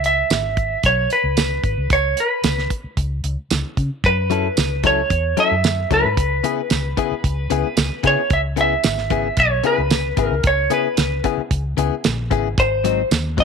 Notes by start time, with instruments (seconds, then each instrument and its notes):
Already playing: fingered electric bass C#2
0.04 electric slide guitar E5, closed hi-hat
0.30 fingered electric bass G#1, snare, closed hi-hat, tambourine
0.57 kick, closed hi-hat
0.83 fingered electric bass B1, electric slide guitar C#5, kick, closed hi-hat
1.10 electric slide guitar B4, closed hi-hat
1.24 fingered electric bass C#2
1.37 snare, closed hi-hat, tambourine
1.64 fingered electric bass G#1, kick, closed hi-hat
1.77 fingered electric bass C#2
1.90 fingered electric bass C#2, electric slide guitar C#5, kick, closed hi-hat
2.17 electric slide guitar B4, closed hi-hat
2.44 fingered electric bass C#2, snare, closed hi-hat, tambourine
2.58 snare
2.70 kick, closed hi-hat
2.84 muted fingered electric bass stroke
2.97 fingered electric bass C#2, kick, closed hi-hat
3.24 fingered electric bass C#2, closed hi-hat
3.50 fingered electric bass C#2, snare, closed hi-hat, tambourine
3.77 fingered electric bass C#3, kick, closed hi-hat
4.04 fingered electric bass F#2, electric slide guitar B4, kick, closed hi-hat
4.30 clean electric guitar F#3 C#4 E4 A4, closed hi-hat
4.57 fingered electric bass C#2, snare, closed hi-hat, tambourine
4.84 clean electric guitar F#3 C#4 E4 A4, electric slide guitar C#5, kick, closed hi-hat
5.10 fingered electric bass E2, kick, closed hi-hat
5.37 clean electric guitar F#3 C#4 E4 A4, electric slide guitar E5, closed hi-hat
5.51 fingered electric bass F#2
5.64 snare, closed hi-hat, tambourine
5.91 fingered electric bass C#2, clean electric guitar F#3 C#4 E4 A4, electric slide guitar B4, kick, closed hi-hat
6.04 fingered electric bass G#2
6.17 fingered electric bass C#2, kick, closed hi-hat
6.44 clean electric guitar C#3 B3 E4 G#4, closed hi-hat
6.70 fingered electric bass C#2, snare, closed hi-hat, tambourine
6.97 clean electric guitar C#3 B3 E4 G#4, kick, closed hi-hat
7.11 muted fingered electric bass stroke
7.24 fingered electric bass C#2, kick, closed hi-hat
7.50 fingered electric bass C#2, clean electric guitar C#3 B3 E4 G#4, closed hi-hat
7.77 fingered electric bass C#2, snare, closed hi-hat, tambourine
8.03 clean electric guitar C#3 B3 E4 G#4, fingered electric bass C#3, kick, closed hi-hat
8.07 electric slide guitar C#5
8.30 fingered electric bass C#2, electric slide guitar E5, kick, closed hi-hat
8.56 clean electric guitar C#3 B3 E4 G#4, closed hi-hat
8.61 electric slide guitar E5
8.84 fingered electric bass G#1, snare, closed hi-hat, tambourine
8.98 snare
9.10 clean electric guitar C#3 B3 E4 G#4, kick, closed hi-hat
9.37 fingered electric bass B1, electric slide guitar C#5, kick, closed hi-hat
9.64 clean electric guitar C#3 B3 E4 G#4, electric slide guitar B4, closed hi-hat
9.78 fingered electric bass C#2
9.90 snare, closed hi-hat, tambourine
10.17 fingered electric bass G#1, clean electric guitar C#3 B3 E4 G#4, kick, closed hi-hat
10.23 electric slide guitar A#4
10.31 fingered electric bass C#2
10.44 fingered electric bass C#2, electric slide guitar C#5, kick, closed hi-hat
10.70 clean electric guitar C#3 B3 E4 G#4, electric slide guitar B4, closed hi-hat
10.97 fingered electric bass C#2, snare, closed hi-hat, tambourine
11.24 clean electric guitar C#3 B3 E4 G#4, kick, closed hi-hat
11.38 muted fingered electric bass stroke
11.51 fingered electric bass C#2, kick, closed hi-hat
11.77 fingered electric bass C#2, clean electric guitar C#3 B3 E4 G#4, closed hi-hat
12.04 fingered electric bass A#1, snare, closed hi-hat, tambourine
12.31 fingered electric bass G#1, clean electric guitar C#3 B3 E4 G#4, kick, closed hi-hat
12.58 fingered electric bass G#1, electric slide guitar C5, kick, closed hi-hat
12.84 clean electric guitar G#2 F#3 C4 D#4, closed hi-hat
13.11 fingered electric bass D#2, snare, closed hi-hat, tambourine
13.37 clean electric guitar G#2 F#3 C4 D#4, electric slide guitar D#5, kick, closed hi-hat